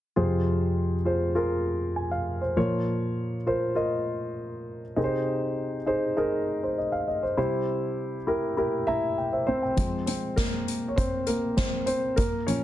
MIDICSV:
0, 0, Header, 1, 3, 480
1, 0, Start_track
1, 0, Key_signature, -4, "minor"
1, 0, Tempo, 600601
1, 129, Time_signature, 4, 2, 24, 8
1, 10099, End_track
2, 0, Start_track
2, 0, Title_t, "Grand piano"
2, 0, Program_c, 0, 0
2, 129, Note_on_c, 0, 65, 57
2, 131, Note_on_c, 0, 48, 51
2, 131, Note_on_c, 0, 68, 54
2, 132, Note_on_c, 0, 41, 49
2, 135, Note_on_c, 0, 72, 57
2, 293, Control_c, 0, 64, 127
2, 760, Note_off_c, 0, 65, 0
2, 761, Note_off_c, 0, 68, 0
2, 763, Note_off_c, 0, 72, 0
2, 841, Note_on_c, 0, 65, 53
2, 846, Note_on_c, 0, 68, 45
2, 849, Note_on_c, 0, 72, 59
2, 1056, Note_off_c, 0, 65, 0
2, 1058, Note_off_c, 0, 68, 0
2, 1060, Note_off_c, 0, 72, 0
2, 1079, Note_on_c, 0, 65, 62
2, 1082, Note_on_c, 0, 68, 53
2, 1086, Note_on_c, 0, 70, 65
2, 1568, Note_on_c, 0, 80, 45
2, 1683, Note_off_c, 0, 80, 0
2, 1690, Note_on_c, 0, 77, 51
2, 1918, Note_off_c, 0, 77, 0
2, 1926, Note_off_c, 0, 65, 0
2, 1927, Note_off_c, 0, 68, 0
2, 1929, Note_off_c, 0, 70, 0
2, 1930, Note_on_c, 0, 72, 51
2, 2020, Note_off_c, 0, 41, 0
2, 2020, Note_off_c, 0, 48, 0
2, 2050, Note_on_c, 0, 65, 59
2, 2051, Note_on_c, 0, 53, 54
2, 2052, Note_on_c, 0, 46, 50
2, 2054, Note_on_c, 0, 70, 50
2, 2055, Note_on_c, 0, 73, 68
2, 2060, Control_c, 0, 64, 0
2, 2158, Note_off_c, 0, 72, 0
2, 2211, Control_c, 0, 64, 127
2, 2681, Note_off_c, 0, 65, 0
2, 2683, Note_off_c, 0, 70, 0
2, 2683, Note_off_c, 0, 73, 0
2, 2769, Note_on_c, 0, 65, 51
2, 2773, Note_on_c, 0, 70, 51
2, 2775, Note_on_c, 0, 72, 65
2, 2980, Note_off_c, 0, 65, 0
2, 2982, Note_off_c, 0, 70, 0
2, 2984, Note_off_c, 0, 72, 0
2, 2999, Note_on_c, 0, 65, 62
2, 3003, Note_on_c, 0, 70, 52
2, 3007, Note_on_c, 0, 75, 64
2, 3846, Note_off_c, 0, 65, 0
2, 3847, Note_off_c, 0, 70, 0
2, 3849, Note_off_c, 0, 75, 0
2, 3940, Note_off_c, 0, 46, 0
2, 3940, Note_off_c, 0, 53, 0
2, 3967, Note_on_c, 0, 63, 63
2, 3970, Note_on_c, 0, 48, 51
2, 3970, Note_on_c, 0, 60, 54
2, 3970, Note_on_c, 0, 68, 57
2, 3975, Note_on_c, 0, 70, 49
2, 3983, Control_c, 0, 64, 0
2, 4025, Note_off_c, 0, 70, 0
2, 4027, Note_on_c, 0, 72, 70
2, 4100, Control_c, 0, 64, 127
2, 4600, Note_off_c, 0, 63, 0
2, 4601, Note_off_c, 0, 68, 0
2, 4630, Note_off_c, 0, 72, 0
2, 4686, Note_on_c, 0, 63, 59
2, 4691, Note_on_c, 0, 68, 52
2, 4694, Note_on_c, 0, 72, 68
2, 4899, Note_off_c, 0, 63, 0
2, 4902, Note_off_c, 0, 68, 0
2, 4903, Note_off_c, 0, 72, 0
2, 4930, Note_on_c, 0, 63, 66
2, 4934, Note_on_c, 0, 68, 53
2, 4938, Note_on_c, 0, 70, 68
2, 5302, Note_on_c, 0, 72, 46
2, 5411, Note_off_c, 0, 72, 0
2, 5418, Note_on_c, 0, 75, 46
2, 5529, Note_off_c, 0, 75, 0
2, 5532, Note_on_c, 0, 77, 55
2, 5646, Note_off_c, 0, 77, 0
2, 5655, Note_on_c, 0, 75, 50
2, 5768, Note_off_c, 0, 75, 0
2, 5771, Note_off_c, 0, 63, 0
2, 5773, Note_off_c, 0, 68, 0
2, 5775, Note_off_c, 0, 70, 0
2, 5777, Note_on_c, 0, 72, 54
2, 5859, Note_off_c, 0, 48, 0
2, 5859, Note_off_c, 0, 60, 0
2, 5887, Note_off_c, 0, 72, 0
2, 5893, Note_on_c, 0, 64, 63
2, 5896, Note_on_c, 0, 48, 53
2, 5896, Note_on_c, 0, 55, 54
2, 5897, Note_on_c, 0, 67, 58
2, 5899, Note_on_c, 0, 72, 71
2, 5903, Control_c, 0, 64, 0
2, 6065, Control_c, 0, 64, 127
2, 6522, Note_off_c, 0, 64, 0
2, 6524, Note_off_c, 0, 67, 0
2, 6526, Note_off_c, 0, 72, 0
2, 6609, Note_on_c, 0, 64, 61
2, 6613, Note_on_c, 0, 67, 51
2, 6617, Note_on_c, 0, 70, 67
2, 6820, Note_off_c, 0, 64, 0
2, 6822, Note_off_c, 0, 67, 0
2, 6825, Note_off_c, 0, 70, 0
2, 6850, Note_on_c, 0, 64, 63
2, 6857, Note_on_c, 0, 67, 58
2, 6857, Note_on_c, 0, 70, 72
2, 7088, Note_on_c, 0, 76, 86
2, 7092, Note_off_c, 0, 64, 0
2, 7097, Note_on_c, 0, 82, 59
2, 7104, Note_on_c, 0, 64, 65
2, 7318, Note_off_c, 0, 82, 0
2, 7336, Note_on_c, 0, 79, 49
2, 7442, Note_off_c, 0, 76, 0
2, 7446, Note_off_c, 0, 79, 0
2, 7452, Note_on_c, 0, 72, 50
2, 7454, Note_on_c, 0, 76, 51
2, 7546, Note_off_c, 0, 64, 0
2, 7554, Note_off_c, 0, 72, 0
2, 7563, Note_off_c, 0, 76, 0
2, 7566, Note_on_c, 0, 72, 74
2, 7574, Note_on_c, 0, 76, 56
2, 7578, Note_on_c, 0, 60, 58
2, 7687, Note_off_c, 0, 76, 0
2, 7693, Note_on_c, 0, 79, 54
2, 7694, Note_off_c, 0, 67, 0
2, 7694, Note_off_c, 0, 70, 0
2, 7782, Note_off_c, 0, 48, 0
2, 7782, Note_off_c, 0, 55, 0
2, 7803, Note_on_c, 0, 53, 42
2, 7805, Note_off_c, 0, 60, 0
2, 7810, Note_on_c, 0, 56, 39
2, 7816, Note_on_c, 0, 60, 45
2, 7820, Control_c, 0, 64, 0
2, 7920, Note_off_c, 0, 79, 0
2, 7955, Control_c, 0, 64, 127
2, 8031, Note_off_c, 0, 72, 0
2, 8043, Note_on_c, 0, 72, 60
2, 8044, Note_off_c, 0, 60, 0
2, 8056, Note_on_c, 0, 60, 54
2, 8277, Note_off_c, 0, 60, 0
2, 8282, Note_on_c, 0, 70, 74
2, 8295, Note_off_c, 0, 72, 0
2, 8295, Note_on_c, 0, 58, 55
2, 8688, Note_off_c, 0, 58, 0
2, 8698, Note_on_c, 0, 73, 54
2, 8724, Note_off_c, 0, 70, 0
2, 8761, Note_on_c, 0, 72, 68
2, 8763, Note_off_c, 0, 73, 0
2, 8772, Note_on_c, 0, 60, 55
2, 8995, Note_off_c, 0, 60, 0
2, 9003, Note_on_c, 0, 70, 70
2, 9013, Note_off_c, 0, 72, 0
2, 9015, Note_on_c, 0, 58, 55
2, 9236, Note_off_c, 0, 58, 0
2, 9246, Note_on_c, 0, 72, 63
2, 9254, Note_off_c, 0, 70, 0
2, 9257, Note_on_c, 0, 60, 54
2, 9300, Note_off_c, 0, 72, 0
2, 9310, Note_off_c, 0, 60, 0
2, 9481, Note_on_c, 0, 72, 74
2, 9495, Note_on_c, 0, 60, 56
2, 9695, Note_off_c, 0, 53, 0
2, 9698, Note_off_c, 0, 56, 0
2, 9709, Note_off_c, 0, 72, 0
2, 9716, Note_off_c, 0, 60, 0
2, 9720, Note_on_c, 0, 70, 79
2, 9729, Note_on_c, 0, 58, 54
2, 9741, Control_c, 0, 64, 0
2, 9879, Control_c, 0, 64, 127
2, 9953, Note_off_c, 0, 58, 0
2, 9963, Note_on_c, 0, 73, 75
2, 9964, Note_on_c, 0, 46, 41
2, 9968, Note_on_c, 0, 53, 38
2, 9973, Note_off_c, 0, 70, 0
2, 9973, Note_on_c, 0, 61, 59
2, 10099, Note_off_c, 0, 46, 0
2, 10099, Note_off_c, 0, 53, 0
2, 10099, Note_off_c, 0, 61, 0
2, 10099, Note_off_c, 0, 73, 0
2, 10099, End_track
3, 0, Start_track
3, 0, Title_t, "Drums"
3, 7811, Note_on_c, 9, 42, 58
3, 7813, Note_on_c, 9, 36, 75
3, 7891, Note_off_c, 9, 42, 0
3, 7893, Note_off_c, 9, 36, 0
3, 8049, Note_on_c, 9, 42, 57
3, 8129, Note_off_c, 9, 42, 0
3, 8290, Note_on_c, 9, 38, 89
3, 8292, Note_on_c, 9, 42, 80
3, 8293, Note_on_c, 9, 36, 95
3, 8370, Note_off_c, 9, 38, 0
3, 8371, Note_off_c, 9, 42, 0
3, 8372, Note_off_c, 9, 36, 0
3, 8536, Note_on_c, 9, 42, 65
3, 8616, Note_off_c, 9, 42, 0
3, 8772, Note_on_c, 9, 36, 78
3, 8774, Note_on_c, 9, 42, 66
3, 8852, Note_off_c, 9, 36, 0
3, 8854, Note_off_c, 9, 42, 0
3, 9004, Note_on_c, 9, 42, 60
3, 9084, Note_off_c, 9, 42, 0
3, 9248, Note_on_c, 9, 38, 88
3, 9250, Note_on_c, 9, 42, 73
3, 9253, Note_on_c, 9, 36, 88
3, 9328, Note_off_c, 9, 38, 0
3, 9330, Note_off_c, 9, 42, 0
3, 9333, Note_off_c, 9, 36, 0
3, 9484, Note_on_c, 9, 42, 53
3, 9564, Note_off_c, 9, 42, 0
3, 9729, Note_on_c, 9, 42, 70
3, 9733, Note_on_c, 9, 36, 82
3, 9809, Note_off_c, 9, 42, 0
3, 9813, Note_off_c, 9, 36, 0
3, 9972, Note_on_c, 9, 42, 55
3, 10052, Note_off_c, 9, 42, 0
3, 10099, End_track
0, 0, End_of_file